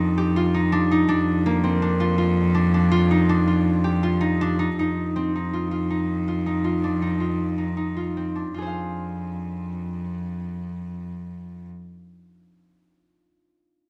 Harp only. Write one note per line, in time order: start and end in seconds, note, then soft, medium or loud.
0.00 1.01 A#3 medium
0.00 0.98 C4 medium
0.00 0.54 D#4 medium
0.00 0.36 F4 loud
0.18 2.53 G4 medium
0.36 2.00 F4 medium
0.54 0.78 D#4 medium
0.72 0.97 D4 loud
0.91 1.15 D#4 medium
1.09 1.82 D4 loud
1.46 4.67 A#3 loud
1.64 4.64 C4 medium
1.82 2.54 D4 medium
2.00 2.17 F4 medium
2.18 2.91 F4 medium
2.55 2.74 D4 medium
2.74 3.17 D4 medium
2.91 3.47 F4 loud
3.11 3.35 D#4 medium
3.29 4.27 D4 loud
3.47 4.03 F4 medium
3.84 6.20 G4 medium
4.03 5.53 F4 medium
4.21 4.47 D#4 medium
4.41 4.65 D4 loud
4.59 4.79 D#4 medium
4.79 5.35 D#4 medium
5.16 8.16 C4 medium
5.35 5.90 D#4 medium
5.53 5.71 F4 medium
5.71 6.27 F4 medium
5.90 6.46 D#4 medium
6.28 6.64 F4 medium
6.46 6.90 D#4 medium
6.64 7.20 F4 medium
6.84 7.08 D4 medium
7.02 7.58 D#4 medium
7.20 7.96 F4 medium
7.58 7.76 D#4 medium
7.77 8.42 D#4 medium
7.97 8.54 F4 medium
8.17 11.17 C4 medium
8.36 11.15 D4 soft
8.54 11.69 F4 soft
8.54 11.73 G#4 soft
8.62 11.77 C5 soft
8.66 11.81 F5 soft